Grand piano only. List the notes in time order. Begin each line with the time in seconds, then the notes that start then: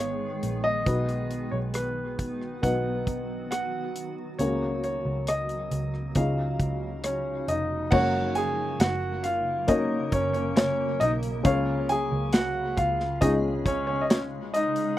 Already playing: C#5
0.64 D#5
1.51 C#5
1.74 B4
2.63 F#5
3.51 F#5
4.39 C#5
4.84 C#5
5.28 D#5
6.16 F5
7.04 C#4 C#5
7.49 D#4 D#5
7.91 F#4 F#5
8.35 G#4 G#5
8.80 F#4 F#5
9.23 F4 F5
9.68 D#4 D#5
10.13 C#4 C#5
10.33 C#4 C#5
10.56 C#4 C#5
11.00 D#4 D#5
11.45 F4 F5
11.89 G#4 G#5
12.33 F#4 F#5
12.77 F4 F5
13.21 D#4 D#5
13.66 C#4 C#5
13.87 C#4 C#5
14.01 D#5
14.10 C#4 C#5
14.54 D#4 D#5